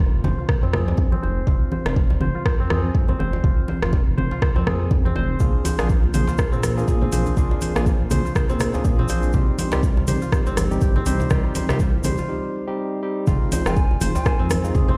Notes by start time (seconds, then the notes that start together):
Already playing: F1 C4 F4 G#4 C5
0.00 high conga, djembe tone
0.24 F1 C5, mid tom, high conga, djembe tone, low conga
0.38 F4
0.49 C5, kick, cross-stick, mid tom
0.63 F2 C4, djembe tone
0.73 G#4, cross-stick, low conga
0.88 djembe tone
0.97 F2, kick, low conga
1.12 C4, high conga
1.23 F1 C5, djembe tone
1.47 F1 F4, kick, mid tom, djembe tone
1.72 C5, high conga
1.86 F1 F4, cross-stick, djembe slap, djembe tone
1.96 kick, high conga
2.10 djembe tone
2.21 F1 C5, mid tom, high conga
2.35 F4
2.46 C5, kick, cross-stick, djembe tone
2.59 F2 C4
2.70 G#4, cross-stick, djembe tone, high conga
2.95 F2, kick
3.08 C4, djembe tone, low conga
3.19 F1 C5, high conga
3.33 djembe tone
3.44 F1 F4, kick, mid tom
3.68 C5, high conga, djembe tone
3.82 F1 F4, cross-stick, djembe slap
3.93 kick, djembe tone, high conga
4.17 F1 C5, mid tom, high conga, low conga
4.31 F4, djembe tone
4.42 C5, kick, cross-stick, mid tom
4.56 F2 C4, djembe tone
4.67 G#4, cross-stick, low conga
4.91 F2, kick, djembe tone, low conga
5.05 C4, high conga
5.16 F1 C5, djembe tone
5.40 A#1 A#3 D4 F4 G#4, kick, mid tom, djembe tone, cabasa
5.65 C5, open hi-hat, high conga, djembe tone, cabasa
5.79 A#1 A#3 D4 F4 G#4, cross-stick, djembe slap, cabasa
5.89 kick, high conga, cabasa
6.03 djembe tone
6.14 A#1 A#3 D4 F4 G#4 C5, open hi-hat, mid tom, high conga, cabasa
6.27 F4, djembe tone, cabasa
6.38 A#3 D4 F4 G#4 C5, kick, cross-stick, cabasa
6.52 A#2 C4, cabasa
6.63 cross-stick, open hi-hat, high conga, djembe tone, cabasa
6.77 A#3 D4 F4 G#4, cabasa
6.88 A#2 G#4, kick, djembe tone, cabasa
7.01 C4, low conga
7.12 A#1 A#3 D4 F4 G#4 C5, open hi-hat, high conga, cabasa
7.26 djembe tone, cabasa
7.37 A#1 A#3 D4 F4 G#4, kick, mid tom, cabasa
7.51 djembe tone
7.61 C5, open hi-hat, high conga, cabasa
7.75 A#1 A#3 D4 F4 G#4, cross-stick, djembe slap, cabasa
7.86 kick, high conga, djembe tone, cabasa
8.11 A#1 A#3 D4 F4 G#4 C5, open hi-hat, mid tom, high conga, djembe tone, low conga, cabasa
8.25 F4, cabasa
8.35 A#3 D4 F4 G#4 C5, kick, cross-stick, mid tom, cabasa
8.49 A#2 C4, djembe tone, cabasa
8.60 cross-stick, open hi-hat, low conga, cabasa
8.74 A#3 D4 F4 G#4, djembe tone, cabasa
8.85 A#2 G#4, kick, low conga, cabasa
8.99 C4, high conga
9.08 A#1 A#3 D4 F4 G#4 C5, open hi-hat, djembe tone, cabasa
9.23 cabasa
9.33 C2 G3 C4 D#4 F4 G4, kick, mid tom, djembe tone, cabasa
9.58 C5, open hi-hat, high conga, cabasa
9.72 C2 G3 C4 D#4 F4 G4, cross-stick, djembe slap, djembe tone, cabasa
9.83 kick, high conga, cabasa
9.97 djembe tone
10.07 C2 G3 C4 D#4 G4 C5, open hi-hat, mid tom, high conga, cabasa
10.22 F4, cabasa
10.32 G3 C4 D#4 G4 C5, kick, cross-stick, djembe tone, cabasa
10.46 G1 C4, cabasa
10.57 cross-stick, open hi-hat, djembe tone, high conga, cabasa
10.71 G3 C4 D#4 G4, cabasa
10.81 G1 G4, kick, cabasa
10.96 C4, djembe tone, low conga
11.06 C2 G3 C4 D#4 G4 C5, open hi-hat, high conga, cabasa
11.20 djembe tone, cabasa
11.30 C2 G3 C4 D#4 F4 G4, kick, cross-stick, mid tom, cabasa
11.55 C5, open hi-hat, high conga, djembe tone, cabasa
11.69 C2 G3 C4 D#4 F4 G4, cross-stick, djembe slap, cabasa
11.79 kick, high conga, djembe tone, cabasa
12.04 C2 G3 C4 D#4 G4 C5, open hi-hat, mid tom, high conga, low conga, cabasa
12.18 F4, djembe tone, cabasa
12.29 G3 C4 D#4 G4
12.67 G3 C4 D#4 G4
13.03 G3 C4 D#4 G4
13.27 F1 G#3 C4 D#4 F4, kick, mid tom, impact, djembe tone, cabasa
13.52 C5, open hi-hat, high conga, djembe tone, cabasa
13.66 F1 G#3 C4 D#4 F4 G#5, cross-stick, djembe slap, cabasa
13.76 kick, high conga, cabasa
13.91 djembe tone
14.01 F1 G#3 C4 D#4 F4 C5, open hi-hat, high conga, low conga, cabasa
14.15 F4 G#5, djembe tone, cabasa
14.25 G#3 C4 D#4 F4 C5, kick, cross-stick, cabasa
14.39 F2 C4
14.50 cross-stick, open hi-hat, high conga, djembe tone, cabasa
14.64 G#3 C4 D#4 F4, cabasa
14.74 F2 G#4, kick, mid tom, djembe tone, cabasa
14.88 C4 C6, low conga